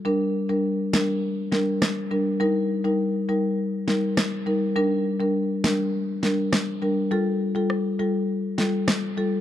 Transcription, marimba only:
\new Staff \with { instrumentName = "Marimba" } { \time 4/4 \key g \minor \tempo 4 = 102 <g d' bes'>16 r8 <g d' bes'>16 r8 <g d' bes'>16 r8. <g d' bes'>16 r8. <g d' bes'>16 r16 | <g ees' bes'>16 r8 <g ees' bes'>16 r8 <g ees' bes'>16 r8. <g ees' bes'>16 r8. <g ees' bes'>16 r16 | <g d' bes'>16 r8 <g d' bes'>16 r8 <g d' bes'>16 r8. <g d' bes'>16 r8. <g d' bes'>16 r16 | <g f' a'>16 r8 <g f' a'>16 r8 <g f' a'>16 r8. <g f' a'>16 r8. <g f' a'>16 r16 | }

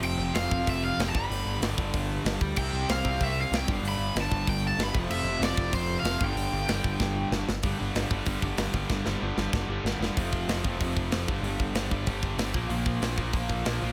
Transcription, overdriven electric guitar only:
\new Staff \with { instrumentName = "Overdriven electric guitar" } { \time 4/4 \key f \lydian \tempo 4 = 190 g''4 f''4 e''8 f''8 g''16 a''16 b''8~ | b''4 r2. | g''4 f''4 e''8 f''8 g''8 r8 | b''4 a''4 g''8 a''8 b''8 r8 |
e''4 d''4 c''8. f''8. g''8~ | g''2. r4 | r1 | r1 |
r1 | r1 | r1 | }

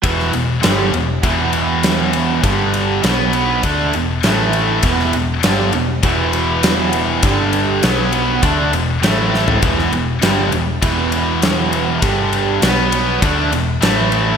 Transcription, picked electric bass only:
\new Staff \with { instrumentName = "Picked electric bass" } { \clef bass \time 4/4 \key e \minor \tempo 4 = 100 e,,8 e,,8 g,,8 e,,8 e,,2 | g,,4 b,,4 d,8 e,,8 a,,4 | e,,8 e,,8 g,,8 e,,8 e,,2 | g,,4 b,,4 d,8 e,,8 a,,4 |
e,,8 e,,8 g,,8 e,,8 e,,2 | g,,4 b,,4 d,8 e,,8 a,,4 | }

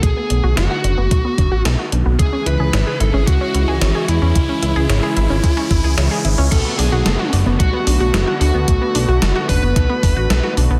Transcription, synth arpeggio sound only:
\new Staff \with { instrumentName = "Synth arpeggio sound" } { \time 4/4 \key b \dorian \tempo 4 = 111 a16 b16 d'16 fis'16 a'16 fis'16 d'16 b16 a16 b16 d'16 fis'16 a'16 fis'16 d'16 b16 | gis16 cis'16 e'16 gis'16 cis''16 gis'16 e'16 cis'16 gis16 cis'16 e'16 gis'16 cis''16 gis'16 e'16 cis'16 | gis16 cis'16 e'16 gis'16 cis''16 gis'16 e'16 cis'16 gis16 cis'16 e'16 gis'16 cis''16 gis'16 e'16 cis'16 | a16 b16 d'16 fis'16 a'16 fis'16 d'16 b16 a16 b16 d'16 fis'16 a'16 fis'16 d'16 b16 |
a16 b16 d'16 fis'16 a'16 fis'16 d'16 b16 a16 b16 d'16 fis'16 a'16 fis'16 d'16 b16 | }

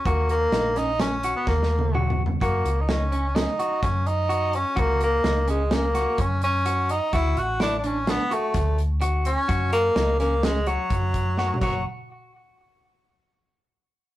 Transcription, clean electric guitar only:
\new Staff \with { instrumentName = "Clean electric guitar" } { \time 5/4 \key fis \major \tempo 4 = 127 fis'4 dis'8 cis'8 cis'8 fis'4 r8 fis'4 | fis'4 dis'8 cis'8 cis'8 fis'4 r8 fis'4 | fis'4 dis'8 cis'8 cis'8 fis'4 r8 fis'4 | fis'4 e'8 d'8 d'8 fis'4 r8 fis'4 |
fis'4 dis'8 cis'8 cis'8 fis'4 r8 fis'8 fis'8 | r1 r4 | }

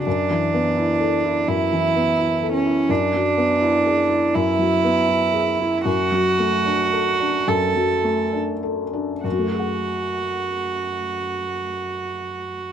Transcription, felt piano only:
\new Staff \with { instrumentName = "Felt piano" } { \time 4/4 \key fis \minor \tempo 4 = 76 \tuplet 3/2 { fis,8 e8 b8 e'8 a'8 e'8 fis,8 e8 b8 e'8 a'8 e'8 } | \tuplet 3/2 { fis,8 fis8 b8 e'8 gis'8 e'8 fis,8 fis8 b8 e'8 gis'8 e'8 } | \tuplet 3/2 { fis,8 fis8 a8 d'8 a'8 d'8 fis,8 fis8 a8 d'8 a'8 d'8 } | <fis, fis a fis' gis' fis''>1 | }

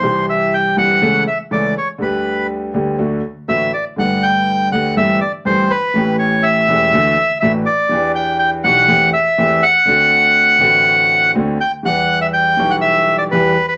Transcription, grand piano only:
\new Staff \with { instrumentName = "Grand piano" } { \clef bass \time 4/4 \key d \mixolydian \tempo 4 = 122 <c, c e g c' g'>4. <g,, g, e g c' g'>8 <cis, cis e a cis' a'>8 r8 <cis, cis e a cis' a'>8 r8 | <d, d g b g'>4. <d, d g b g'>8 <d, d fis a fis'>8 r8 <a,, a, d fis a fis'>8 r8 | <g,, g, d a b g'>4. <d, d a b g'>8 <g,, g, e a c' g'>8 r8 <g,, g, e a c' g'>8 r8 | <a,, a, e a cis' g'>4. <e,, e, e a cis' g'>8 <d, d e a d' fis'>8 r8 <a,, a, e a d' fis'>8 r8 |
<e, e b d' g'>4. <b,, b, e b d' g'>8 <e, e a c' g'>8 r8 <e, e a c' g'>8 r8 | <d, d a c' fis'>4. <a,, a, d a c' fis'>4. <d, d a c' fis'>8 r8 | \key e \minor <e, e g b g'>4. <b,, b, e g b g'>4. <e, e g b g'>8 r8 | }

